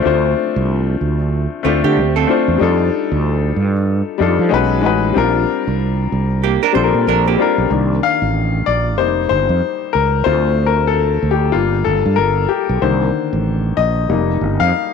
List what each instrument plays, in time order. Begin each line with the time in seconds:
Already playing: upright piano A3 C4 D4 F4 C5
0.02 fretless electric bass D2, upright piano A3 C4 D4 F4
0.07 upright piano C5
0.56 fretless electric bass C2
1.01 fretless electric bass D2
1.63 fretless electric bass D2, upright piano A3 C4 D4 F4, hollow-body jazz guitar A3 F4
1.67 upright piano C5
1.84 fretless electric bass D3, hollow-body jazz guitar G4
1.97 fretless electric bass D2
2.16 hollow-body jazz guitar C4 A4
2.27 upright piano A3 C4 D4 F4
2.31 upright piano C5
2.48 fretless electric bass E2
2.58 fretless electric bass F2, upright piano G3 D4 D#4 F4
2.63 upright piano A4
3.12 fretless electric bass D2
3.56 fretless electric bass G2
4.18 fretless electric bass F2, upright piano G3 D4 D#4 F4
4.22 upright piano A4
4.39 fretless electric bass F3
4.49 fretless electric bass B1, upright piano G#3 C#4 D#4 F#4
4.54 upright piano B4
4.81 fretless electric bass A1, upright piano G#3 C#4 D#4 F#4
4.86 upright piano B4
5.13 fretless electric bass A#1, upright piano G3 C4 D4 F4
5.18 upright piano A#4
5.67 fretless electric bass C2
6.12 fretless electric bass C2
6.44 hollow-body jazz guitar A#3 G4
6.63 hollow-body jazz guitar D4 A#4
6.73 fretless electric bass A#1, upright piano G3 C4 D4 F4, hollow-body jazz guitar C5
6.77 upright piano A4
6.84 upright piano A#4
6.94 fretless electric bass A#2
7.07 fretless electric bass A#1, hollow-body jazz guitar D4 A#4
7.28 hollow-body jazz guitar A#3 G4
7.37 upright piano G3 C4 D4 F4
7.42 upright piano A#4
7.58 fretless electric bass B1
7.70 fretless electric bass C2, upright piano D#3 A#3 D4
8.03 upright piano F5
8.22 fretless electric bass A1
8.66 fretless electric bass A#1, upright piano D5
8.98 fretless electric bass F1, upright piano G3 A#3 D#4 C5
9.29 fretless electric bass G1, upright piano C5
9.49 fretless electric bass F2
9.93 fretless electric bass C#2, upright piano A#4
10.24 fretless electric bass D2, upright piano A3 C4 F4 C5
10.66 upright piano A#4
10.87 upright piano A4
11.23 fretless electric bass D2
11.31 upright piano G4
11.52 fretless electric bass G1, upright piano G3 A#3 F4
11.84 fretless electric bass G1, upright piano A4
12.06 fretless electric bass G2
12.16 fretless electric bass G1, upright piano A#4
12.49 upright piano G4
12.69 fretless electric bass B1
12.82 fretless electric bass C2, upright piano D3 D#3 A#3 C5
13.33 fretless electric bass A1
13.77 fretless electric bass A#1, upright piano D#5
14.09 fretless electric bass F1, upright piano G3 A#3 D#4
14.41 fretless electric bass G1
14.60 fretless electric bass F2, upright piano F5